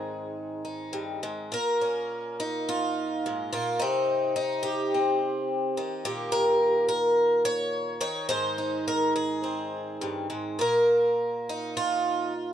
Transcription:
0, 0, Header, 1, 2, 480
1, 0, Start_track
1, 0, Tempo, 580271
1, 1261, Time_signature, 4, 2, 24, 8
1, 2690, Tempo, 560224
1, 7490, Tempo, 574713
1, 10563, End_track
2, 0, Start_track
2, 0, Title_t, "Twelve-string acoustic guitar"
2, 0, Program_c, 0, 25
2, 0, Note_on_c, 0, 44, 70
2, 0, Note_on_c, 0, 51, 45
2, 0, Note_on_c, 0, 60, 50
2, 0, Note_on_c, 0, 63, 44
2, 0, Note_on_c, 0, 68, 75
2, 525, Note_off_c, 0, 63, 0
2, 535, Note_on_c, 0, 63, 46
2, 765, Note_off_c, 0, 44, 0
2, 768, Note_on_c, 0, 43, 61
2, 1013, Note_off_c, 0, 43, 0
2, 1016, Note_on_c, 0, 44, 60
2, 1235, Note_off_c, 0, 60, 0
2, 1235, Note_off_c, 0, 63, 0
2, 1256, Note_on_c, 0, 46, 58
2, 1259, Note_off_c, 0, 44, 0
2, 1261, Note_off_c, 0, 51, 0
2, 1263, Note_off_c, 0, 68, 0
2, 1271, Note_on_c, 0, 70, 88
2, 1501, Note_on_c, 0, 61, 46
2, 1980, Note_off_c, 0, 61, 0
2, 1984, Note_on_c, 0, 63, 75
2, 2219, Note_off_c, 0, 70, 0
2, 2222, Note_on_c, 0, 65, 85
2, 2693, Note_off_c, 0, 63, 0
2, 2696, Note_on_c, 0, 44, 64
2, 2914, Note_off_c, 0, 65, 0
2, 2921, Note_off_c, 0, 46, 0
2, 2925, Note_on_c, 0, 65, 73
2, 2931, Note_on_c, 0, 46, 55
2, 2934, Note_off_c, 0, 44, 0
2, 3155, Note_on_c, 0, 63, 76
2, 3167, Note_off_c, 0, 65, 0
2, 3170, Note_off_c, 0, 46, 0
2, 3174, Note_on_c, 0, 48, 67
2, 3628, Note_off_c, 0, 63, 0
2, 3639, Note_on_c, 0, 63, 73
2, 3869, Note_on_c, 0, 67, 80
2, 4139, Note_on_c, 0, 60, 43
2, 4365, Note_off_c, 0, 63, 0
2, 4850, Note_on_c, 0, 51, 54
2, 4852, Note_off_c, 0, 48, 0
2, 5065, Note_off_c, 0, 60, 0
2, 5076, Note_off_c, 0, 67, 0
2, 5088, Note_on_c, 0, 46, 77
2, 5089, Note_on_c, 0, 67, 66
2, 5319, Note_on_c, 0, 70, 95
2, 5793, Note_off_c, 0, 70, 0
2, 5802, Note_off_c, 0, 67, 0
2, 5803, Note_on_c, 0, 70, 80
2, 6284, Note_off_c, 0, 70, 0
2, 6287, Note_on_c, 0, 73, 100
2, 6753, Note_off_c, 0, 51, 0
2, 6757, Note_off_c, 0, 73, 0
2, 6763, Note_on_c, 0, 51, 63
2, 6766, Note_off_c, 0, 46, 0
2, 6767, Note_on_c, 0, 73, 92
2, 7001, Note_off_c, 0, 73, 0
2, 7005, Note_on_c, 0, 72, 90
2, 7014, Note_on_c, 0, 44, 73
2, 7256, Note_on_c, 0, 63, 46
2, 7489, Note_off_c, 0, 72, 0
2, 7508, Note_on_c, 0, 70, 83
2, 7739, Note_off_c, 0, 70, 0
2, 7743, Note_on_c, 0, 68, 68
2, 7976, Note_on_c, 0, 60, 42
2, 8455, Note_off_c, 0, 44, 0
2, 8459, Note_on_c, 0, 43, 64
2, 8693, Note_off_c, 0, 43, 0
2, 8696, Note_on_c, 0, 44, 57
2, 8916, Note_off_c, 0, 60, 0
2, 8919, Note_off_c, 0, 63, 0
2, 8938, Note_on_c, 0, 46, 63
2, 8941, Note_off_c, 0, 44, 0
2, 8942, Note_off_c, 0, 51, 0
2, 8950, Note_off_c, 0, 68, 0
2, 8958, Note_on_c, 0, 70, 85
2, 9695, Note_on_c, 0, 63, 68
2, 9910, Note_off_c, 0, 70, 0
2, 9924, Note_on_c, 0, 65, 83
2, 10389, Note_off_c, 0, 63, 0
2, 10556, Note_off_c, 0, 65, 0
2, 10563, Note_off_c, 0, 46, 0
2, 10563, End_track
0, 0, End_of_file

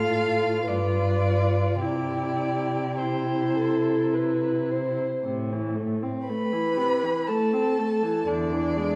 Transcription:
0, 0, Header, 1, 5, 480
1, 0, Start_track
1, 0, Key_signature, 0, "major"
1, 0, Tempo, 1060071
1, 308, Tempo, 1145038
1, 785, Time_signature, 3, 2, 24, 8
1, 2228, Key_signature, 0, "minor"
1, 2228, Tempo, 1000000
1, 4001, End_track
2, 0, Start_track
2, 0, Title_t, "Violin"
2, 0, Program_c, 0, 40
2, 0, Note_on_c, 0, 77, 63
2, 309, Note_on_c, 0, 74, 60
2, 315, Note_off_c, 0, 77, 0
2, 781, Note_off_c, 0, 74, 0
2, 784, Note_on_c, 0, 74, 58
2, 1274, Note_on_c, 0, 72, 44
2, 1280, Note_off_c, 0, 74, 0
2, 1756, Note_off_c, 0, 72, 0
2, 2717, Note_on_c, 0, 83, 64
2, 3197, Note_on_c, 0, 81, 56
2, 3204, Note_off_c, 0, 83, 0
2, 3675, Note_on_c, 0, 74, 60
2, 3682, Note_off_c, 0, 81, 0
2, 4001, Note_off_c, 0, 74, 0
2, 4001, End_track
3, 0, Start_track
3, 0, Title_t, "Violin"
3, 0, Program_c, 1, 40
3, 0, Note_on_c, 1, 69, 51
3, 297, Note_off_c, 1, 69, 0
3, 304, Note_on_c, 1, 71, 45
3, 773, Note_off_c, 1, 71, 0
3, 782, Note_on_c, 1, 67, 43
3, 1263, Note_off_c, 1, 67, 0
3, 1273, Note_on_c, 1, 67, 42
3, 1511, Note_on_c, 1, 69, 41
3, 1518, Note_off_c, 1, 67, 0
3, 1754, Note_on_c, 1, 71, 47
3, 1760, Note_off_c, 1, 69, 0
3, 1997, Note_on_c, 1, 72, 46
3, 2003, Note_off_c, 1, 71, 0
3, 2227, Note_off_c, 1, 72, 0
3, 2708, Note_on_c, 1, 71, 56
3, 3195, Note_on_c, 1, 69, 51
3, 3202, Note_off_c, 1, 71, 0
3, 3676, Note_on_c, 1, 62, 47
3, 3683, Note_off_c, 1, 69, 0
3, 4001, Note_off_c, 1, 62, 0
3, 4001, End_track
4, 0, Start_track
4, 0, Title_t, "Viola"
4, 0, Program_c, 2, 41
4, 0, Note_on_c, 2, 65, 47
4, 300, Note_off_c, 2, 65, 0
4, 303, Note_on_c, 2, 65, 45
4, 783, Note_on_c, 2, 64, 40
4, 790, Note_off_c, 2, 65, 0
4, 1273, Note_off_c, 2, 64, 0
4, 1275, Note_on_c, 2, 64, 40
4, 2127, Note_off_c, 2, 64, 0
4, 2223, Note_on_c, 2, 48, 36
4, 2354, Note_on_c, 2, 52, 38
4, 2361, Note_off_c, 2, 48, 0
4, 2467, Note_on_c, 2, 57, 36
4, 2474, Note_off_c, 2, 52, 0
4, 2595, Note_on_c, 2, 60, 35
4, 2602, Note_off_c, 2, 57, 0
4, 2726, Note_on_c, 2, 57, 40
4, 2733, Note_off_c, 2, 60, 0
4, 2836, Note_on_c, 2, 52, 40
4, 2844, Note_off_c, 2, 57, 0
4, 2954, Note_on_c, 2, 48, 45
4, 2961, Note_off_c, 2, 52, 0
4, 3081, Note_on_c, 2, 52, 38
4, 3088, Note_off_c, 2, 48, 0
4, 3201, Note_on_c, 2, 57, 42
4, 3208, Note_off_c, 2, 52, 0
4, 3320, Note_on_c, 2, 60, 37
4, 3328, Note_off_c, 2, 57, 0
4, 3442, Note_on_c, 2, 57, 35
4, 3449, Note_off_c, 2, 60, 0
4, 3557, Note_on_c, 2, 52, 37
4, 3564, Note_off_c, 2, 57, 0
4, 3672, Note_off_c, 2, 52, 0
4, 3675, Note_on_c, 2, 50, 40
4, 3798, Note_on_c, 2, 52, 40
4, 3805, Note_off_c, 2, 50, 0
4, 3914, Note_on_c, 2, 56, 36
4, 3921, Note_off_c, 2, 52, 0
4, 4001, Note_off_c, 2, 56, 0
4, 4001, End_track
5, 0, Start_track
5, 0, Title_t, "Cello"
5, 0, Program_c, 3, 42
5, 0, Note_on_c, 3, 45, 45
5, 305, Note_on_c, 3, 43, 47
5, 311, Note_off_c, 3, 45, 0
5, 780, Note_off_c, 3, 43, 0
5, 783, Note_on_c, 3, 48, 42
5, 2125, Note_off_c, 3, 48, 0
5, 2227, Note_on_c, 3, 45, 50
5, 2633, Note_off_c, 3, 45, 0
5, 3667, Note_on_c, 3, 40, 51
5, 4001, Note_off_c, 3, 40, 0
5, 4001, End_track
0, 0, End_of_file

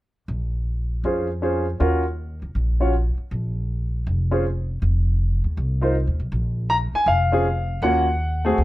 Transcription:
0, 0, Header, 1, 4, 480
1, 0, Start_track
1, 0, Key_signature, -5, "minor"
1, 0, Tempo, 377121
1, 368, Time_signature, 4, 2, 24, 8
1, 10998, End_track
2, 0, Start_track
2, 0, Title_t, "Grand piano"
2, 0, Program_c, 0, 0
2, 1334, Note_on_c, 0, 61, 40
2, 1339, Note_on_c, 0, 65, 38
2, 1340, Note_on_c, 0, 68, 37
2, 1348, Note_on_c, 0, 72, 43
2, 1612, Note_off_c, 0, 61, 0
2, 1614, Note_off_c, 0, 65, 0
2, 1615, Note_off_c, 0, 68, 0
2, 1619, Note_off_c, 0, 72, 0
2, 1808, Note_on_c, 0, 61, 43
2, 1818, Note_on_c, 0, 65, 38
2, 1820, Note_on_c, 0, 68, 40
2, 1823, Note_on_c, 0, 72, 47
2, 2090, Note_off_c, 0, 61, 0
2, 2095, Note_off_c, 0, 65, 0
2, 2096, Note_off_c, 0, 68, 0
2, 2097, Note_off_c, 0, 72, 0
2, 2290, Note_on_c, 0, 61, 50
2, 2295, Note_on_c, 0, 65, 48
2, 2298, Note_on_c, 0, 66, 48
2, 2300, Note_on_c, 0, 70, 57
2, 2571, Note_off_c, 0, 61, 0
2, 2574, Note_off_c, 0, 65, 0
2, 2575, Note_off_c, 0, 66, 0
2, 2577, Note_off_c, 0, 70, 0
2, 3569, Note_on_c, 0, 61, 45
2, 3570, Note_on_c, 0, 65, 41
2, 3576, Note_on_c, 0, 66, 40
2, 3581, Note_on_c, 0, 73, 45
2, 3723, Note_off_c, 0, 61, 0
2, 3724, Note_off_c, 0, 65, 0
2, 3727, Note_off_c, 0, 66, 0
2, 3729, Note_off_c, 0, 73, 0
2, 5491, Note_on_c, 0, 61, 50
2, 5495, Note_on_c, 0, 65, 46
2, 5496, Note_on_c, 0, 68, 44
2, 5504, Note_on_c, 0, 72, 52
2, 5644, Note_off_c, 0, 61, 0
2, 5646, Note_off_c, 0, 65, 0
2, 5647, Note_off_c, 0, 68, 0
2, 5651, Note_off_c, 0, 72, 0
2, 7400, Note_on_c, 0, 63, 50
2, 7409, Note_on_c, 0, 70, 44
2, 7411, Note_on_c, 0, 65, 44
2, 7418, Note_on_c, 0, 72, 53
2, 7558, Note_off_c, 0, 63, 0
2, 7562, Note_off_c, 0, 70, 0
2, 7563, Note_off_c, 0, 65, 0
2, 7567, Note_off_c, 0, 72, 0
2, 8525, Note_on_c, 0, 82, 81
2, 8595, Note_off_c, 0, 82, 0
2, 8848, Note_on_c, 0, 80, 79
2, 9008, Note_on_c, 0, 77, 85
2, 9021, Note_off_c, 0, 80, 0
2, 9318, Note_on_c, 0, 60, 55
2, 9321, Note_on_c, 0, 61, 55
2, 9327, Note_on_c, 0, 65, 52
2, 9330, Note_on_c, 0, 68, 66
2, 9474, Note_off_c, 0, 60, 0
2, 9475, Note_off_c, 0, 61, 0
2, 9478, Note_off_c, 0, 65, 0
2, 9480, Note_off_c, 0, 68, 0
2, 9917, Note_off_c, 0, 77, 0
2, 9960, Note_on_c, 0, 78, 85
2, 9963, Note_on_c, 0, 58, 54
2, 9972, Note_on_c, 0, 61, 51
2, 9975, Note_on_c, 0, 65, 49
2, 9979, Note_on_c, 0, 66, 59
2, 10244, Note_off_c, 0, 58, 0
2, 10248, Note_off_c, 0, 61, 0
2, 10250, Note_off_c, 0, 65, 0
2, 10252, Note_off_c, 0, 66, 0
2, 10750, Note_on_c, 0, 57, 64
2, 10757, Note_on_c, 0, 60, 58
2, 10759, Note_on_c, 0, 66, 60
2, 10766, Note_on_c, 0, 68, 72
2, 10908, Note_off_c, 0, 57, 0
2, 10911, Note_off_c, 0, 60, 0
2, 10912, Note_off_c, 0, 66, 0
2, 10916, Note_off_c, 0, 68, 0
2, 10998, Note_off_c, 0, 78, 0
2, 10998, End_track
3, 0, Start_track
3, 0, Title_t, "Upright bass"
3, 0, Program_c, 1, 32
3, 359, Note_on_c, 1, 34, 67
3, 1279, Note_off_c, 1, 34, 0
3, 1319, Note_on_c, 1, 41, 62
3, 2241, Note_off_c, 1, 41, 0
3, 2292, Note_on_c, 1, 39, 70
3, 3034, Note_off_c, 1, 39, 0
3, 3081, Note_on_c, 1, 37, 52
3, 3237, Note_off_c, 1, 37, 0
3, 3245, Note_on_c, 1, 34, 66
3, 3991, Note_off_c, 1, 34, 0
3, 4216, Note_on_c, 1, 34, 68
3, 5130, Note_off_c, 1, 34, 0
3, 5175, Note_on_c, 1, 29, 71
3, 6090, Note_off_c, 1, 29, 0
3, 6133, Note_on_c, 1, 29, 73
3, 6873, Note_off_c, 1, 29, 0
3, 6922, Note_on_c, 1, 39, 53
3, 7084, Note_off_c, 1, 39, 0
3, 7093, Note_on_c, 1, 36, 72
3, 7690, Note_off_c, 1, 36, 0
3, 7729, Note_on_c, 1, 39, 53
3, 7878, Note_off_c, 1, 39, 0
3, 7885, Note_on_c, 1, 35, 57
3, 8035, Note_off_c, 1, 35, 0
3, 8042, Note_on_c, 1, 34, 74
3, 8785, Note_off_c, 1, 34, 0
3, 8988, Note_on_c, 1, 29, 79
3, 9910, Note_off_c, 1, 29, 0
3, 9951, Note_on_c, 1, 39, 75
3, 10869, Note_off_c, 1, 39, 0
3, 10919, Note_on_c, 1, 38, 73
3, 10998, Note_off_c, 1, 38, 0
3, 10998, End_track
4, 0, Start_track
4, 0, Title_t, "Muted upright bass strokes"
4, 4038, Note_on_c, 9, 29, 31
4, 4165, Note_off_c, 9, 29, 0
4, 8820, Note_on_c, 9, 29, 31
4, 8948, Note_off_c, 9, 29, 0
4, 10998, End_track
0, 0, End_of_file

